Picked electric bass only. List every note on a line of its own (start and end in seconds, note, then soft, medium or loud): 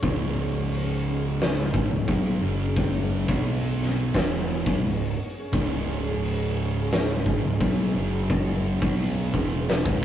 0.02 1.70 C#1 medium
1.74 1.90 G#1 loud
1.91 2.07 C#1 medium
2.08 2.40 B1 loud
2.43 3.25 F#1 medium
3.28 4.11 B1 medium
4.14 4.63 E1 medium
4.66 4.83 B1 loud
4.84 5.16 C#1 medium
5.53 7.22 C#1 medium
7.26 7.42 G#1 medium
7.43 7.59 C#1 medium
7.60 7.93 B1 loud
7.95 8.78 F#1 medium
8.82 9.30 B1 medium
9.34 9.82 E1 medium
9.86 10.02 C#1 medium